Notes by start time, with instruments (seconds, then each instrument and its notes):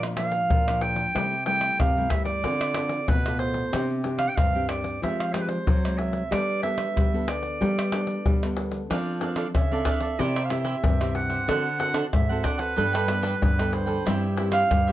Already playing: nylon-string guitar A#2 F3 A#3 D4
0.03 pandeiro, tamborim, shaker
0.17 nylon-string guitar F3 A#3 D4, clarinet F5, pandeiro, tamborim, shaker
0.32 pandeiro, shaker
0.50 nylon-string guitar A#2 F3, pandeiro, shaker, surdo
0.68 nylon-string guitar F3 A#3 D4, pandeiro, tamborim, shaker
0.81 clarinet G5, pandeiro
0.96 pandeiro, shaker
1.15 nylon-string guitar C3 G3 A3 E4, pandeiro, tamborim, shaker, surdo
1.33 pandeiro, shaker
1.46 nylon-string guitar G3 A3 E4, clarinet G5, pandeiro
1.61 pandeiro, tamborim, shaker
1.79 nylon-string guitar G2 C3, clarinet F5, pandeiro, tamborim, shaker, surdo
1.97 nylon-string guitar G3 A3 E4, pandeiro, shaker
2.10 clarinet E5, pandeiro, tamborim, shaker, surdo
2.25 clarinet D5, pandeiro, shaker
2.44 nylon-string guitar D3 C4 F4 A4, pandeiro, shaker, surdo
2.61 pandeiro, tamborim, shaker
2.74 nylon-string guitar C4 F4 A4, pandeiro, tamborim, shaker
2.89 pandeiro, shaker
3.08 nylon-string guitar A2 B2, clarinet B4, pandeiro, shaker, surdo
3.26 nylon-string guitar F4 A4, pandeiro, tamborim, shaker
3.39 clarinet C5, pandeiro, shaker
3.54 pandeiro, shaker
3.73 nylon-string guitar C3 C4 D4 G4, pandeiro, tamborim, shaker, surdo
3.90 pandeiro, shaker
4.04 nylon-string guitar C4 D4 G4, pandeiro, shaker
4.18 clarinet F5, pandeiro, tamborim, shaker
4.28 clarinet G5
4.36 nylon-string guitar G2 C3, clarinet F5, pandeiro, tamborim, shaker, surdo
4.55 nylon-string guitar C4 D4 G4, pandeiro, shaker
4.69 clarinet D5, pandeiro, tamborim, shaker
4.84 pandeiro, shaker
5.02 nylon-string guitar F3 G#3 C4 G4, clarinet E5, pandeiro, shaker, surdo
5.20 clarinet F5, pandeiro, tamborim, shaker
5.33 nylon-string guitar G#3 C4 G4, clarinet C5, pandeiro, tamborim
5.42 clarinet B4
5.49 clarinet C5, pandeiro, shaker
5.67 nylon-string guitar C3 F#3, pandeiro, shaker, surdo
5.85 nylon-string guitar G#3 C4, pandeiro, tamborim, shaker
5.98 clarinet E5, pandeiro
6.13 pandeiro, shaker
6.31 nylon-string guitar G3 B3 D4 A4, clarinet D5, pandeiro, tamborim, shaker, surdo
6.50 pandeiro, shaker
6.63 nylon-string guitar B3 D4 A4, clarinet E5, pandeiro, shaker
6.78 pandeiro, tamborim, shaker
6.96 nylon-string guitar D3 G3, pandeiro, tamborim, shaker, surdo
7.14 nylon-string guitar B3 D4 A4, pandeiro, shaker
7.28 clarinet D5, pandeiro, tamborim, shaker
7.43 pandeiro, shaker
7.61 nylon-string guitar G3 B3 D4 A4, pandeiro, shaker, surdo
7.79 pandeiro, tamborim, shaker
7.92 nylon-string guitar B3 D4 A4, pandeiro, tamborim
8.07 pandeiro, shaker
8.26 nylon-string guitar D3 G3, pandeiro, shaker, surdo
8.43 nylon-string guitar B3 D4 A4, pandeiro, tamborim, shaker
8.57 pandeiro
8.72 pandeiro, shaker
8.90 nylon-string guitar F3 C4 D4 A4, cavaquinho D4 A4 D5 F5, pandeiro, tamborim, shaker, surdo
9.08 pandeiro, shaker
9.21 nylon-string guitar C4 D4 A4, cavaquinho D4 A4 D5 F5, pandeiro
9.36 cavaquinho D4 A4 D5 F5, pandeiro, tamborim, shaker
9.54 nylon-string guitar C#3, clarinet E5, pandeiro, tamborim, shaker, surdo
9.71 nylon-string guitar C4 D4 A4, cavaquinho A4 D5 F5, pandeiro, shaker
9.85 cavaquinho D4 A4 D5 F5, pandeiro, tamborim, surdo
10.00 cavaquinho A4 D5 F5, pandeiro, shaker
10.19 nylon-string guitar C3 C4 E4 G4, cavaquinho E4 G4 C5 E5, clarinet D5, pandeiro, shaker, surdo
10.36 cavaquinho G4 C5 E5, pandeiro, tamborim, shaker
10.45 clarinet F5
10.49 nylon-string guitar C4 E4 G4, cavaquinho E4 G4 C5 E5, clarinet E5, pandeiro, tamborim
10.64 cavaquinho E4 G4 C5 E5, pandeiro, shaker
10.83 nylon-string guitar G2 C3, pandeiro, shaker, surdo
11.00 nylon-string guitar C4 E4 G4, cavaquinho G4 C5 E5, pandeiro, tamborim, shaker
11.15 clarinet F#5, pandeiro, shaker
11.29 cavaquinho G4 C5 E5, pandeiro, shaker
11.48 nylon-string guitar D3 C4 F#4 A4, cavaquinho D4 A4 C5 F#5, pandeiro, tamborim, shaker, surdo
11.66 pandeiro, shaker
11.79 nylon-string guitar C4 F#4 A4, cavaquinho D4 A4 C5 F#5, clarinet F#5, pandeiro, shaker
11.94 cavaquinho D4 A4 C5 F#5, pandeiro, tamborim, shaker
12.13 nylon-string guitar G#2, clarinet E5, pandeiro, tamborim, shaker, surdo
12.29 nylon-string guitar C4 F#4 A4, cavaquinho A4 C5 F#5, pandeiro, shaker
12.43 cavaquinho D4 A4 C5 F#5, clarinet D5, pandeiro, tamborim, shaker, surdo
12.58 cavaquinho A4 C5 F#5, clarinet B4, pandeiro, shaker
12.76 nylon-string guitar G2 G3 B3 D4 A4, cavaquinho D4 A4 B4 G5, pandeiro, shaker, surdo
12.93 cavaquinho A4 B4 G5, pandeiro, tamborim, shaker
13.07 nylon-string guitar B3 D4 A4, cavaquinho D4 A4 B4 G5, pandeiro, tamborim, shaker
13.22 cavaquinho D4 A4 B4 G5, pandeiro, shaker
13.42 nylon-string guitar G2 D3, clarinet B4, pandeiro, shaker, surdo
13.58 nylon-string guitar B3 D4 A4, cavaquinho A4 B4 G5, pandeiro, tamborim, shaker
13.73 clarinet C5, pandeiro, shaker
13.86 cavaquinho A4 B4 G5, pandeiro, shaker
14.05 nylon-string guitar G2 G3 C4 E4 G4, cavaquinho E4 G4 C5 E5, pandeiro, tamborim, shaker, surdo
14.24 pandeiro, shaker
14.36 nylon-string guitar C4 E4 G4, cavaquinho E4 G4 C5 E5, pandeiro, shaker
14.51 cavaquinho E4 G4 C5 E5, clarinet F5, pandeiro, tamborim, shaker
14.71 nylon-string guitar G2 G3, pandeiro, tamborim, shaker, surdo
14.87 nylon-string guitar C4 E4, cavaquinho G4 C5 E5, pandeiro, shaker